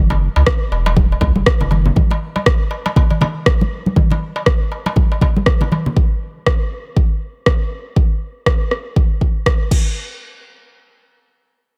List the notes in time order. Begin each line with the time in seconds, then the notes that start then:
Already playing: F#1
0.10 muted conga, darbuka tek, low conga
0.36 C#2, darbuka tek
0.46 kick, cross-stick, muted conga
0.72 E1, darbuka ka
0.86 muted conga, darbuka tek
0.97 kick, high conga
1.12 darbuka ka
1.21 C#2, kick, muted conga, darbuka tek, high conga, low conga
1.36 F#1, high conga
1.46 kick, cross-stick
1.61 F#1, darbuka ka, muted conga, low conga
1.71 darbuka tek, high conga, darbuka dum
1.86 low conga
1.96 kick, high conga, darbuka dum
2.11 muted conga, darbuka tek
2.36 darbuka tek, high conga
2.46 kick, cross-stick, muted conga
2.71 darbuka ka
2.86 muted conga, darbuka tek
2.96 kick, darbuka tek, low conga
3.10 darbuka ka, darbuka dum
3.21 muted conga, high conga, darbuka tek, low conga
3.46 kick, cross-stick
3.61 muted conga, high conga
3.86 high conga
3.96 kick, high conga, darbuka dum
4.11 muted conga, darbuka tek, low conga
4.36 darbuka tek
4.46 kick, cross-stick, muted conga
4.72 darbuka ka
4.86 muted conga, darbuka tek
4.96 kick, high conga
5.12 darbuka ka
5.21 kick, muted conga, high conga, darbuka tek, low conga
5.36 high conga
5.46 kick, cross-stick
5.61 muted conga, darbuka ka, low conga
5.72 high conga, darbuka tek, darbuka dum
5.86 low conga
5.96 kick
6.46 kick, cross-stick
6.96 kick
7.46 kick, cross-stick
7.96 kick
8.46 kick, cross-stick
8.71 cross-stick
8.96 kick
9.21 kick
9.46 kick, cross-stick
9.71 kick, crash